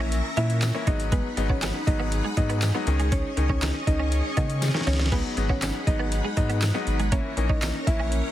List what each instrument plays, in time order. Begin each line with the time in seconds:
Already playing: analog synth bass A#1, grand piano E3 A#3 C#4 E4, string machine C#4 A#4 E5 A#5, synth pluck E4 E5
0.12 closed hi-hat
0.37 analog synth bass A#2, grand piano E3 A#3 C#4 E4, clean electric guitar A#3, synth pluck E4 E5, closed hi-hat
0.50 closed hi-hat
0.62 muted clean electric guitar stroke, snare, clap, closed hi-hat, tambourine
0.74 grand piano E3 A#3 C#4 E4, clean electric guitar C#4
0.87 analog synth bass G#1, grand piano F#3 G#3 B3 D#4, string machine D#4 G#4 F#5 B5, clean electric guitar D#4, synth pluck D#4 D#5, kick, closed hi-hat
1.00 closed hi-hat
1.12 clean electric guitar G#3, synth pluck B3 B4, kick, closed hi-hat
1.37 analog synth bass G#1, grand piano F#3 G#3 B3 D#4, muted clean electric guitar stroke, closed hi-hat
1.49 clean electric guitar B3, synth pluck C#4 C#5, kick
1.62 clean electric guitar C#4, snare, clap, closed hi-hat, tambourine
1.75 muted clean electric guitar stroke
1.87 analog synth bass G#1, grand piano F#3 G#3 B3 D#4, synth pluck D#4 D#5, kick, closed hi-hat
2.00 clean electric guitar B3
2.12 closed hi-hat
2.25 clean electric guitar G#3
2.37 analog synth bass G#2, grand piano F#3 G#3 B3 D#4, synth pluck D#4 D#5, muted clean electric guitar stroke, kick, closed hi-hat
2.50 clean electric guitar B3, closed hi-hat
2.62 snare, clap, closed hi-hat, tambourine
2.74 grand piano F#3 G#3 B3 D#4, clean electric guitar B3
2.87 analog synth bass C#2, grand piano D#3 G#3 C#4 D#4, string machine C#4 D#5 C#6, muted clean electric guitar stroke, closed hi-hat
3.00 clean electric guitar G#3, closed hi-hat
3.12 clean electric guitar C#4, synth pluck C#4 C#5, kick, closed hi-hat
3.37 analog synth bass C#2, grand piano D#3 G#3 C#4 D#4, muted clean electric guitar stroke, closed hi-hat
3.49 clean electric guitar C#4, synth pluck C#4 C#5, kick
3.62 clean electric guitar D#4, snare, clap, closed hi-hat, tambourine
3.75 muted clean electric guitar stroke
3.87 analog synth bass C#2, grand piano D#3 G#3 C#4 D#4, synth pluck D#4 D#5, kick, closed hi-hat
4.00 clean electric guitar C#4
4.12 closed hi-hat
4.37 analog synth bass C#3, grand piano D#3 G#3 C#4 D#4, clean electric guitar B3, synth pluck D#4 D#5, kick, closed hi-hat
4.50 closed hi-hat
4.62 muted clean electric guitar stroke, snare, closed hi-hat, tambourine
4.68 snare
4.74 grand piano D#3 G#3 C#4 D#4, clean electric guitar C#4, snare
4.81 snare
4.87 analog synth bass C#2, synth pluck C#4 C#5, clean electric guitar D#4, snare, open hi-hat
4.93 snare
4.99 snare
5.06 snare
5.12 grand piano F#3 G#3 B3 D#4, clean electric guitar G#3, synth pluck B3 B4, string machine D#4 F#5 B5, kick, crash
5.37 analog synth bass G#1, grand piano F#3 G#3 B3 D#4, muted clean electric guitar stroke, closed hi-hat
5.49 clean electric guitar B3, synth pluck C#4 C#5, kick
5.62 clean electric guitar C#4, snare, clap, closed hi-hat, tambourine
5.75 muted clean electric guitar stroke
5.87 analog synth bass G#1, grand piano F#3 G#3 B3 D#4, synth pluck D#4 D#5, kick, closed hi-hat
5.99 clean electric guitar B3
6.12 closed hi-hat
6.25 clean electric guitar G#3
6.37 analog synth bass G#2, grand piano F#3 G#3 B3 D#4, synth pluck D#4 D#5, muted clean electric guitar stroke, kick, closed hi-hat
6.50 clean electric guitar B3, closed hi-hat
6.62 snare, clap, closed hi-hat, tambourine
6.74 grand piano F#3 G#3 B3 D#4, clean electric guitar B3
6.87 analog synth bass G#1, muted clean electric guitar stroke, closed hi-hat
7.00 clean electric guitar G#3, closed hi-hat
7.12 grand piano E3 A#3 C#4 E4, clean electric guitar A#3, string machine C#4 A#4 C#5 A#5, synth pluck C#4 C#5, kick, closed hi-hat
7.37 analog synth bass A#1, grand piano E3 A#3 C#4 D#4, muted clean electric guitar stroke, closed hi-hat
7.49 clean electric guitar C#4, synth pluck D#4 D#5, kick
7.62 clean electric guitar D#4, snare, clap, closed hi-hat, tambourine
7.75 muted clean electric guitar stroke
7.87 analog synth bass A#1, grand piano E3 A#3 C#4 E4, synth pluck E4 E5, kick, closed hi-hat
8.00 clean electric guitar C#4
8.12 closed hi-hat